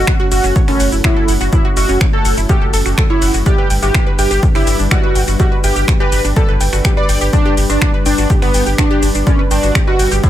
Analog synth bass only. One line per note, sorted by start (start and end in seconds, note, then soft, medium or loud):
0.32 0.39 F#1 medium
0.44 0.52 F#1 medium
0.68 0.76 F#1 medium
0.80 0.88 F#1 loud
0.92 1.00 F#1 medium
1.28 1.36 F#1 medium
1.41 1.48 F#1 medium
1.77 1.85 F#1 medium
1.89 1.97 F#1 medium
2.25 2.33 F#1 medium
2.37 2.45 F#1 medium
2.61 2.69 F#1 medium
2.74 2.81 F#1 loud
2.86 2.93 F#1 medium
3.22 3.30 F#1 medium
3.34 3.42 F#1 medium
3.70 3.78 G1 medium
3.83 3.90 G1 medium
4.19 4.27 G1 medium
4.31 4.39 G1 medium
4.55 4.63 G1 medium
4.67 4.75 G1 loud
4.79 4.87 G1 medium
5.15 5.23 G1 medium
5.28 5.35 G1 medium
5.64 5.72 G1 loud
5.76 5.84 G1 medium
6.12 6.20 G1 loud
6.24 6.32 G1 medium
6.49 6.56 G1 medium
6.61 6.68 G1 medium
6.73 6.81 G1 medium
7.09 7.17 G1 medium
7.21 7.29 G1 medium
7.57 7.65 G1 medium
7.70 7.77 G1 medium
8.06 8.14 G1 medium
8.18 8.26 G1 medium
8.42 8.50 G1 medium
8.54 8.62 G1 loud
8.66 8.74 G1 medium
9.03 9.10 G1 medium
9.15 9.22 G1 medium
9.51 9.59 G1 medium
9.63 9.71 G1 medium
9.99 10.07 G1 medium
10.12 10.19 G1 medium